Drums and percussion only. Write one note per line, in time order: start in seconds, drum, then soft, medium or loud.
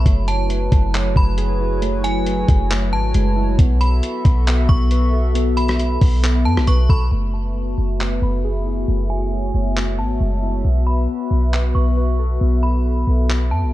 0.06 kick loud
0.06 closed hi-hat medium
0.28 closed hi-hat medium
0.50 closed hi-hat medium
0.72 kick loud
0.72 closed hi-hat medium
0.94 clap loud
0.94 closed hi-hat medium
1.16 kick medium
1.38 closed hi-hat medium
1.82 closed hi-hat medium
2.04 closed hi-hat medium
2.26 closed hi-hat medium
2.48 kick loud
2.48 closed hi-hat medium
2.71 clap loud
2.71 closed hi-hat medium
3.14 closed hi-hat medium
3.59 kick loud
3.59 closed hi-hat medium
3.81 closed hi-hat medium
4.03 closed hi-hat medium
4.25 kick loud
4.25 closed hi-hat medium
4.47 clap loud
4.47 closed hi-hat medium
4.69 kick medium
4.91 closed hi-hat medium
5.35 closed hi-hat medium
5.57 closed hi-hat medium
5.68 cross-stick loud
5.68 closed hi-hat soft
5.79 closed hi-hat medium
6.01 kick loud
6.01 open hi-hat medium
6.24 clap loud
6.24 closed hi-hat medium
6.57 cross-stick loud
6.67 closed hi-hat medium
6.90 kick medium
8.01 clap loud
9.77 clap loud
11.54 clap loud
13.30 clap loud